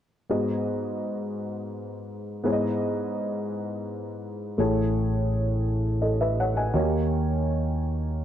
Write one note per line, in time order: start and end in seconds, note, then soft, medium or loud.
0.30 1.34 G#2 soft
0.30 2.41 B3 soft
0.30 2.41 F#4 soft
0.30 2.41 G#4 soft
0.30 2.41 D#5 soft
2.44 3.49 G#2 soft
2.44 4.55 B3 soft
2.44 4.55 E4 soft
2.44 4.56 G#4 soft
2.44 2.52 C#5 soft
2.52 4.59 D#5 medium
4.58 6.70 A1 medium
4.58 5.62 A2 soft
4.58 6.69 A3 soft
4.58 6.69 E4 soft
4.58 6.00 G#4 soft
4.58 6.00 C#5 medium
6.02 6.20 A4 soft
6.02 6.19 D#5 soft
6.21 6.38 B4 soft
6.21 6.38 E5 soft
6.40 6.57 C#5 soft
6.40 6.56 F#5 soft
6.57 6.91 D#5 soft
6.57 6.91 G#5 soft
6.74 8.25 D#2 medium
6.74 7.77 D#3 soft
6.74 8.25 A#3 medium
6.74 8.25 D#4 soft
6.74 6.81 F#4 soft
6.74 8.25 C#5 medium
6.81 8.25 G4 soft